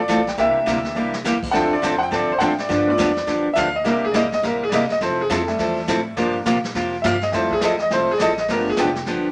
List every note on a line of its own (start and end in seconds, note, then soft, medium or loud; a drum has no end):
0.00 0.27 D5 medium
0.08 0.37 A1 medium
0.08 0.20 E3 medium
0.08 0.20 A3 medium
0.08 0.20 C4 medium
0.08 0.20 F4 medium
0.08 0.20 A4 medium
0.08 kick soft
0.08 snare medium
0.08 hi-hat pedal medium
0.27 0.39 G5 medium
0.27 snare soft
0.37 0.54 C2 medium
0.37 0.58 C3 medium
0.37 0.94 E3 medium
0.37 0.58 G3 medium
0.37 0.58 A#3 medium
0.37 0.94 A#3 soft
0.37 0.95 D4 medium
0.37 0.58 E4 medium
0.37 0.58 G4 medium
0.37 0.93 G4 medium
0.37 0.95 E5 loud
0.37 brush sweep soft
0.37 kick soft
0.37 snare soft
0.56 muted upright bass stroke soft
0.66 0.95 D2 medium
0.66 0.78 C3 medium
0.66 0.78 G3 medium
0.66 0.78 A#3 medium
0.66 0.78 E4 medium
0.66 0.78 G4 medium
0.66 kick soft
0.66 snare medium
0.66 hi-hat pedal medium
0.84 snare soft
0.95 1.24 C2 medium
0.95 1.16 C3 medium
0.95 1.12 E3 soft
0.95 1.16 G3 medium
0.95 1.12 A#3 soft
0.95 1.16 A#3 medium
0.95 1.12 D4 soft
0.95 1.16 E4 medium
0.95 1.16 G4 medium
1.14 snare medium
1.24 1.41 E2 medium
1.24 1.36 C3 medium
1.24 1.36 G3 medium
1.24 1.36 A#3 medium
1.24 1.36 E4 medium
1.24 1.37 G4 medium
1.24 snare medium
1.24 hi-hat pedal medium
1.42 muted upright bass stroke soft
1.42 kick medium
1.42 crash medium
1.51 1.82 D2 medium
1.51 1.73 D3 medium
1.51 1.73 F3 medium
1.51 2.66 F3 medium
1.51 2.65 C4 medium
1.51 1.74 C4 medium
1.51 1.74 D4 medium
1.51 2.66 E4 medium
1.51 1.74 A4 medium
1.51 1.54 F#5 medium
1.51 brush sweep medium
1.51 kick soft
1.51 snare soft
1.56 1.72 G5 medium
1.73 1.83 D5 medium
1.82 2.11 F2 loud
1.82 1.94 D3 medium
1.82 1.94 F3 medium
1.82 1.94 C4 medium
1.82 1.94 D4 medium
1.82 1.94 A4 medium
1.82 2.01 C5 medium
1.82 kick soft
1.82 snare medium
1.82 hi-hat pedal medium
1.98 2.00 F#5 medium
2.03 2.13 G5 loud
2.11 2.28 G2 medium
2.11 2.31 D3 medium
2.11 2.31 F3 medium
2.11 2.32 C4 medium
2.11 2.32 D4 medium
2.11 2.32 A4 medium
2.11 2.30 D5 medium
2.11 brush sweep soft
2.11 kick soft
2.11 snare soft
2.29 2.42 C5 medium
2.29 muted upright bass stroke soft
2.39 2.69 A2 medium
2.39 2.51 D3 medium
2.39 2.52 F3 medium
2.39 2.52 C4 medium
2.39 2.52 D4 medium
2.39 2.52 A4 medium
2.39 2.41 F#5 medium
2.39 kick soft
2.39 snare medium
2.39 hi-hat pedal medium
2.43 2.59 G5 loud
2.58 2.70 D5 medium
2.58 snare soft
2.69 2.98 G2 medium
2.69 2.89 D3 medium
2.69 2.89 F3 medium
2.69 2.89 B3 medium
2.69 2.90 D4 medium
2.69 2.90 G4 medium
2.69 2.88 D5 medium
2.69 brush sweep soft
2.69 kick soft
2.69 snare soft
2.87 3.05 A3 medium
2.87 3.05 B3 medium
2.87 3.05 F4 medium
2.87 3.45 D5 medium
2.98 3.26 E2 loud
2.98 3.09 D3 medium
2.98 3.10 F3 medium
2.98 3.10 B3 medium
2.98 3.10 D4 medium
2.98 3.10 G4 medium
2.98 kick soft
2.98 snare medium
2.98 hi-hat pedal medium
3.16 snare soft
3.27 3.44 F2 medium
3.27 3.47 D3 medium
3.27 3.47 F3 medium
3.27 3.47 B3 medium
3.27 3.47 D4 medium
3.27 3.48 G4 medium
3.27 brush sweep soft
3.27 kick soft
3.27 snare soft
3.44 muted upright bass stroke soft
3.54 3.84 D2 medium
3.54 3.67 D3 medium
3.54 3.67 F3 medium
3.54 3.67 B3 medium
3.54 3.68 D4 medium
3.54 3.68 G4 medium
3.54 3.56 E5 medium
3.54 kick soft
3.54 snare medium
3.54 hi-hat pedal medium
3.59 3.75 F5 loud
3.76 3.86 D#5 medium
3.84 4.13 C2 medium
3.84 4.05 C3 medium
3.84 4.05 G3 medium
3.84 4.06 A#3 medium
3.84 4.05 A#3 medium
3.84 4.06 D4 medium
3.84 4.06 E4 medium
3.84 4.05 E4 medium
3.84 4.05 G4 medium
3.84 4.03 A#4 medium
3.84 brush sweep soft
3.84 kick soft
3.84 snare soft
4.04 4.15 G#4 medium
4.12 4.42 A#1 medium
4.12 4.25 C3 medium
4.12 4.25 G3 medium
4.12 4.26 A#3 medium
4.12 4.26 E4 medium
4.12 4.26 G4 medium
4.12 4.14 D5 medium
4.12 kick soft
4.12 snare medium
4.12 hi-hat pedal medium
4.16 4.33 D#5 medium
4.32 4.44 D#5 loud
4.32 snare soft
4.43 4.71 A1 medium
4.43 4.63 C3 medium
4.43 4.63 G3 medium
4.43 4.63 A#3 medium
4.43 4.63 E4 medium
4.43 4.64 G4 medium
4.43 4.62 A#4 medium
4.43 brush sweep medium
4.43 kick soft
4.43 snare soft
4.63 4.73 G#4 loud
4.69 5.00 G1 medium
4.69 4.83 C3 medium
4.69 4.84 G3 medium
4.69 4.84 A#3 medium
4.69 4.84 E4 medium
4.69 4.84 G4 medium
4.69 4.72 D5 medium
4.69 kick soft
4.69 snare medium
4.69 hi-hat pedal medium
4.74 4.91 D#5 medium
4.90 5.02 D#5 loud
4.90 snare soft
5.01 5.29 F1 medium
5.01 5.21 F3 medium
5.01 5.21 C4 medium
5.01 5.21 E4 medium
5.01 5.22 A4 medium
5.01 5.19 C5 medium
5.01 brush sweep soft
5.01 kick soft
5.01 snare soft
5.21 5.31 G#4 medium
5.30 5.58 F2 loud
5.30 5.41 F3 medium
5.30 5.41 C4 medium
5.30 5.41 E4 medium
5.30 5.42 A4 medium
5.30 5.87 A4 medium
5.30 kick soft
5.30 snare medium
5.30 hi-hat pedal medium
5.47 6.13 G3 medium
5.47 6.13 A3 medium
5.47 6.14 E4 medium
5.47 snare soft
5.58 5.87 E2 medium
5.58 5.79 F3 medium
5.58 5.79 C4 medium
5.58 5.79 E4 medium
5.58 5.80 A4 medium
5.58 brush sweep medium
5.58 kick soft
5.58 snare soft
5.88 6.16 A2 loud
5.88 5.99 F3 medium
5.88 5.99 C4 medium
5.88 5.99 E4 medium
5.88 6.00 A4 medium
5.88 kick soft
5.88 snare medium
5.88 hi-hat pedal medium
6.16 6.45 G2 medium
6.16 6.37 C3 medium
6.16 6.38 F3 medium
6.16 6.37 F3 medium
6.16 6.38 A#3 soft
6.16 6.37 A#3 medium
6.16 6.39 D4 medium
6.16 6.37 F4 medium
6.16 6.38 G4 medium
6.16 brush sweep medium
6.16 kick soft
6.16 snare soft
6.45 6.74 A#2 medium
6.45 6.57 C3 medium
6.45 6.57 F3 medium
6.45 6.57 A#3 medium
6.45 6.57 F4 medium
6.45 6.58 G4 medium
6.45 kick soft
6.45 snare medium
6.45 hi-hat pedal medium
6.64 snare soft
6.75 7.03 F2 medium
6.75 6.95 C3 medium
6.75 6.95 F3 medium
6.75 6.95 A#3 medium
6.75 6.95 F4 medium
6.75 6.96 G4 medium
6.75 brush sweep soft
6.75 kick soft
6.75 snare soft
7.02 7.32 G2 medium
7.02 7.15 C3 medium
7.02 7.15 F3 medium
7.02 7.16 A#3 medium
7.02 7.16 F4 medium
7.02 7.16 G4 medium
7.02 7.04 E5 medium
7.02 kick soft
7.02 snare medium
7.02 hi-hat pedal medium
7.06 7.22 F5 loud
7.21 7.33 D#5 medium
7.21 snare soft
7.32 7.61 F2 medium
7.32 7.53 F3 medium
7.32 7.77 G3 medium
7.32 7.77 A3 medium
7.32 7.53 C4 medium
7.32 7.77 E4 medium
7.32 7.54 E4 medium
7.32 7.54 A4 medium
7.32 7.51 C5 medium
7.32 brush sweep medium
7.32 kick soft
7.32 snare soft
7.51 7.62 G#4 loud
7.51 kick medium
7.60 7.90 E2 medium
7.60 7.73 F3 medium
7.60 7.74 C4 medium
7.60 7.74 E4 medium
7.60 7.74 A4 medium
7.60 7.62 D5 medium
7.60 kick soft
7.60 snare medium
7.60 hi-hat pedal medium
7.65 7.81 D#5 medium
7.79 7.92 D#5 loud
7.79 snare soft
7.90 8.07 C2 medium
7.90 8.11 F3 medium
7.90 8.07 G3 soft
7.90 8.07 A3 soft
7.90 8.11 C4 medium
7.90 8.07 E4 medium
7.90 8.11 E4 medium
7.90 8.12 A4 medium
7.90 8.09 C5 loud
7.90 brush sweep soft
7.90 kick soft
7.90 snare soft
8.11 8.21 G#4 loud
8.18 8.48 A1 medium
8.18 8.31 F3 medium
8.18 8.31 C4 medium
8.18 8.32 E4 medium
8.18 8.20 D5 medium
8.18 kick soft
8.18 snare medium
8.18 hi-hat pedal medium
8.22 8.32 A4 medium
8.22 8.38 D#5 loud
8.37 8.50 D#5 medium
8.37 snare soft
8.48 8.77 G1 medium
8.48 8.69 D3 medium
8.48 8.69 F3 medium
8.48 8.93 A3 medium
8.48 8.93 B3 medium
8.48 8.69 B3 medium
8.48 8.69 D4 medium
8.48 8.94 F4 medium
8.48 8.69 G4 medium
8.48 8.67 A#4 medium
8.48 brush sweep medium
8.48 kick soft
8.48 snare soft
8.70 8.79 G#4 medium
8.77 9.05 F1 medium
8.77 8.89 D3 medium
8.77 8.89 F3 medium
8.77 8.89 B3 medium
8.77 8.89 D4 medium
8.77 8.90 G4 medium
8.77 9.32 G4 loud
8.77 kick soft
8.77 snare medium
8.77 hi-hat pedal medium
8.95 snare soft
9.06 9.32 G1 medium
9.06 9.27 D3 medium
9.06 9.27 F3 medium
9.06 9.27 B3 medium
9.06 9.27 D4 medium
9.06 9.27 G4 medium
9.06 brush sweep medium
9.06 kick soft
9.06 snare soft